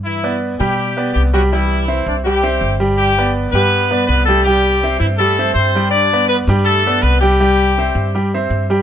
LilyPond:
<<
  \new Staff \with { instrumentName = "Grand piano" } { \time 4/4 \key g \major \tempo 4 = 163 r8 <b b' d''>4 <g g' g''>4 <b b' d''>4 <g g' g''>8 | <g g' g''>4 <c' c'' e''>4 <g g' g''>8 <c' c'' e''>4 <g g' g''>8~ | <g g' g''>8 <b b' d''>4 <g g' g''>4 <b b' d''>4 <g g' g''>8 | <g g' g''>4 <c' c'' e''>4 <g g' g''>8 <c' c'' e''>4 <g g' g''>8~ |
<g g' g''>8 <b b' d''>4 <g g' g''>4 <b b' d''>4 <g g' g''>8 | <g g' g''>4 <c' c'' e''>4 <g g' g''>8 <c' c'' e''>4 <g g' g''>8 | }
  \new Staff \with { instrumentName = "Horn section" } { \time 4/4 \key g \major <e e'>4 r8 <g g'>4. <g g'>8 <fis fis'>8 | <e e'>4. <d' d''>8 <g g'>4. r8 | <g g'>4 r8 <b b'>4. <b b'>8 <a a'>8 | <g g'>4. <e e'>8 <a a'>4 <c' c''>4 |
<d' d''>4 <b b'>8 r8 <a a'>4 <b b'>8 <g g'>8~ | <g g'>2~ <g g'>8 r4. | }
  \new Staff \with { instrumentName = "Upright bass" } { \clef bass \time 4/4 \key g \major g,4. b,4. c,4~ | c,4. c,4. g,,4~ | g,,4. g,4. c,4~ | c,4. g,4. g,4~ |
g,4. g,4. c,4~ | c,4. g,4. g,4 | }
>>